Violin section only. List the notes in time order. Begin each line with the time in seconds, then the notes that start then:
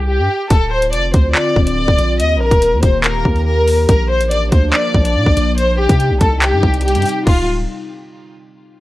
0.08 G4
0.51 A4
0.72 C5
0.93 D5
1.14 C5
1.35 D5
1.67 D5
2.20 D#5
2.41 A#4
2.83 C5
3.05 A#4
3.47 A#4
3.89 A#4
4.10 C5
4.31 D5
4.52 C5
4.73 D5
5.05 D5
5.58 C5
5.79 G4
6.21 A4
6.42 G4
6.84 G4
7.27 F4